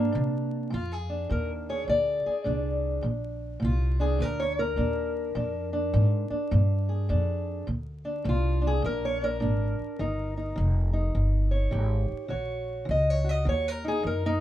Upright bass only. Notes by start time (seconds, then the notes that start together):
Already playing: G#2
0.15 C3
0.73 F2
1.30 D#2
1.88 D2
2.26 muted upright bass stroke
2.47 C2
3.04 A#1
3.62 C2
4.20 D2
4.78 D#2
5.35 F2
5.94 G#2
6.30 muted upright bass stroke
6.52 G2
7.10 F2
7.68 D2
8.25 C2
8.84 A#1
9.42 G#1
9.79 muted upright bass stroke
9.99 G1
10.58 F1
11.15 G1
11.72 G#1
12.11 muted upright bass stroke
12.31 A#1
12.89 C#2
13.46 D#2
14.04 F#2